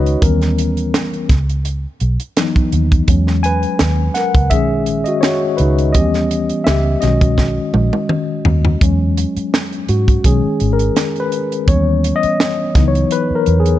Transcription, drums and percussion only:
0.06 closed hi-hat
0.22 kick, closed hi-hat
0.41 snare, closed hi-hat
0.58 closed hi-hat
0.77 closed hi-hat
0.94 snare, closed hi-hat
1.13 closed hi-hat
1.29 kick, snare, closed hi-hat
1.49 closed hi-hat
1.65 closed hi-hat
2.00 closed hi-hat
2.20 closed hi-hat
2.37 snare, closed hi-hat
2.56 kick, closed hi-hat
2.72 closed hi-hat
2.92 kick, closed hi-hat
3.08 kick, closed hi-hat
3.27 snare
3.44 closed hi-hat
3.63 closed hi-hat
3.79 snare, closed hi-hat
4.15 snare, closed hi-hat
4.35 kick, closed hi-hat
4.51 kick, closed hi-hat
4.86 closed hi-hat
5.06 closed hi-hat
5.23 snare, closed hi-hat
5.58 closed hi-hat
5.78 closed hi-hat
5.94 kick, closed hi-hat
6.14 snare, closed hi-hat
6.31 closed hi-hat
6.50 closed hi-hat
6.67 snare, closed hi-hat
7.02 snare, closed hi-hat
7.21 kick, closed hi-hat
7.38 kick, snare
7.74 high tom
7.93 high tom
8.09 mid tom
8.45 floor tom
8.65 floor tom
8.81 kick, closed hi-hat
9.17 closed hi-hat
9.37 closed hi-hat
9.54 snare, closed hi-hat
9.72 closed hi-hat
9.88 closed hi-hat
10.08 kick, closed hi-hat
10.24 kick, closed hi-hat
10.60 closed hi-hat
10.79 closed hi-hat
10.96 snare, closed hi-hat
11.16 closed hi-hat
11.32 closed hi-hat
11.52 closed hi-hat
11.68 kick, closed hi-hat
12.04 closed hi-hat
12.23 closed hi-hat
12.40 snare, closed hi-hat
12.75 kick, snare, closed hi-hat
12.95 closed hi-hat
13.11 closed hi-hat
13.46 closed hi-hat
13.66 closed hi-hat

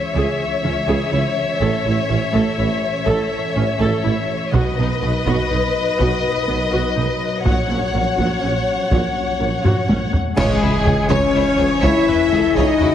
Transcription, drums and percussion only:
4.54 taiko
5.26 taiko
6.00 taiko
7.46 taiko
8.18 taiko
8.91 taiko
9.65 taiko low-mid
9.89 taiko high
10.13 taiko low
10.37 concert bass drum, taiko, crash
10.86 taiko low
11.10 taiko
11.83 taiko
12.08 taiko low
12.56 taiko
12.80 taiko low

